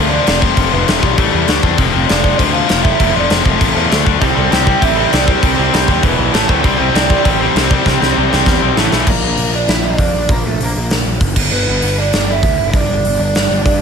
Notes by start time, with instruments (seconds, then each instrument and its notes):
Already playing: picked electric bass D2, distorted electric guitar F2 C3 F3, lead electric guitar A3 A4
0.09 distorted electric guitar F2 C3 F3, lead electric guitar D4 D5
0.27 picked electric bass F1, distorted electric guitar F2 C3 F3, snare, crash
0.40 distorted electric guitar F2 C3 F3, lead electric guitar C4 C5, kick
0.56 picked electric bass F1, distorted electric guitar F2 C3 F3, kick, crash
0.71 picked electric bass F1, distorted electric guitar F2 C3 F3, lead electric guitar B3 B4
0.86 picked electric bass F1, distorted electric guitar F2 C3 F3, lead electric guitar A3 A4, snare, crash
1.00 picked electric bass B1, distorted electric guitar F2 C3 F3, lead electric guitar G3 G4, kick
1.17 picked electric bass A1, distorted electric guitar A2 E3 A3, kick, crash
1.31 picked electric bass E2, distorted electric guitar A2 E3 A3
1.47 picked electric bass D2, distorted electric guitar D3 A3 D4, snare, crash
1.61 picked electric bass E2, distorted electric guitar D3 A3 D4, lead electric guitar C4 C5, kick
1.77 picked electric bass F1, distorted electric guitar F2 C3 F3, kick, crash
1.93 picked electric bass F1, distorted electric guitar F2 C3 F3
2.08 picked electric bass F1, distorted electric guitar F2 C3 F3, lead electric guitar D4 D5, snare, crash
2.23 distorted electric guitar F2 C3 F3, kick
2.37 picked electric bass D2, distorted electric guitar F2 C3 F3, lead electric guitar C4 C5, kick, crash
2.52 distorted electric guitar F2 C3 F3, lead electric guitar F4 F5
2.67 picked electric bass F1, distorted electric guitar F2 C3 F3, snare, crash
2.83 distorted electric guitar F2 C3 F3, lead electric guitar E4 E5, kick
2.99 picked electric bass F1, distorted electric guitar F2 C3 F3, kick, crash
3.13 picked electric bass F1, distorted electric guitar F2 C3 F3, lead electric guitar D4 D5
3.29 picked electric bass F1, distorted electric guitar F2 C3 F3, lead electric guitar C5, snare, crash
3.33 lead electric guitar C4
3.43 picked electric bass F1, distorted electric guitar F2 C3 F3, lead electric guitar A3 A4, kick
3.59 picked electric bass A1, distorted electric guitar F2 C3 F3, kick, crash
3.74 picked electric bass E2, distorted electric guitar F2 C3 F3
3.89 picked electric bass D2, distorted electric guitar D3 A3 D4, snare, crash
4.05 picked electric bass D2, distorted electric guitar D3 A3 D4, kick
4.20 picked electric bass C2, distorted electric guitar C3 G3 C4, lead electric guitar A4 A5, kick, crash
4.35 picked electric bass C2, distorted electric guitar C3 G3 C4
4.50 picked electric bass C2, distorted electric guitar C3 G3 C4, lead electric guitar G4 G5, snare, crash
4.66 distorted electric guitar C3 G3 C4, kick
4.81 picked electric bass A1, distorted electric guitar C3 G3 C4, lead electric guitar E4 E5, kick, crash
4.97 distorted electric guitar C3 G3 C4
5.12 picked electric bass C2, distorted electric guitar C3 G3 C4, lead electric guitar D4 D5, snare, crash
5.27 distorted electric guitar C3 G3 C4, lead electric guitar C4 C5, kick
5.42 picked electric bass C2, distorted electric guitar C3 G3 C4, kick, crash
5.57 picked electric bass C2, distorted electric guitar C3 G3 C4
5.73 picked electric bass C2, distorted electric guitar C3 G3 C4, snare, crash
5.88 picked electric bass D#2, distorted electric guitar C3 G3 C4, kick
6.03 picked electric bass E1, distorted electric guitar E2 B2 E3, kick, crash
6.17 picked electric bass B1, distorted electric guitar E2 B2 E3
6.33 picked electric bass A1, distorted electric guitar A2 E3 A3, snare, crash
6.48 picked electric bass D2, distorted electric guitar A2 E3 A3, lead electric guitar C4 C5, kick
6.63 picked electric bass C2, distorted electric guitar C3 G3 C4, kick, crash
6.78 picked electric bass C2, distorted electric guitar C3 G3 C4
6.93 picked electric bass C2, distorted electric guitar C3 G3 C4, lead electric guitar D4 D5, snare, crash
7.09 distorted electric guitar C3 G3 C4, kick
7.25 picked electric bass A1, distorted electric guitar C3 G3 C4, lead electric guitar C4 C5, kick, crash
7.40 distorted electric guitar C3 G3 C4, lead electric guitar C4 C5
7.55 picked electric bass C2, distorted electric guitar C3 G3 C4, snare, crash
7.71 distorted electric guitar C3 G3 C4, kick
7.86 picked electric bass C2, distorted electric guitar C3 G3 C4, kick, snare
8.01 picked electric bass C2, distorted electric guitar C3 G3 C4, snare
8.16 picked electric bass C2, distorted electric guitar C3 G3 C4
8.31 picked electric bass C2, distorted electric guitar C3 G3 C4, snare
8.46 picked electric bass E2, distorted electric guitar C3 G3 C4, kick, snare
8.62 picked electric bass B1, distorted electric guitar C3 G3 C4
8.77 picked electric bass A1, distorted electric guitar A2 E3 A3, snare
8.92 picked electric bass B1, distorted electric guitar A2 E3 A3, snare
9.07 picked electric bass A#1, lead electric guitar A#3 A#4, kick, crash
9.22 picked electric bass A#1
9.37 picked electric bass A#1, open hi-hat
9.54 lead electric guitar D4 D5
9.67 picked electric bass A#1, lead electric guitar E4 E5, snare, open hi-hat
9.84 lead electric guitar D4 D5
9.98 picked electric bass F2, kick, open hi-hat
10.14 picked electric bass A#1
10.29 picked electric bass A#1, lead electric guitar A#3 A#4, kick, open hi-hat
10.45 picked electric bass A#1, lead electric guitar A3 A4
10.60 picked electric bass A#1, lead electric guitar A#3, open hi-hat
10.64 lead electric guitar A#4
10.77 picked electric bass A#1
10.90 picked electric bass A#1, snare, open hi-hat
11.06 picked electric bass A#1
11.21 picked electric bass F#1, kick, open hi-hat
11.36 picked electric bass G1, kick, crash
11.52 picked electric bass G1, lead electric guitar B3 B4
11.68 picked electric bass G1
11.82 picked electric bass G1, open hi-hat
11.98 lead electric guitar D4 D5
12.13 picked electric bass G1, snare, open hi-hat
12.31 lead electric guitar E4 E5
12.43 picked electric bass D2, kick, open hi-hat
12.59 picked electric bass G1
12.73 picked electric bass G1, lead electric guitar D4 D5, kick, open hi-hat
12.89 picked electric bass G1
13.05 picked electric bass G1, open hi-hat
13.19 picked electric bass G1, lead electric guitar D4 D5
13.35 picked electric bass G1, snare, open hi-hat
13.50 picked electric bass G1
13.66 picked electric bass G2, kick, open hi-hat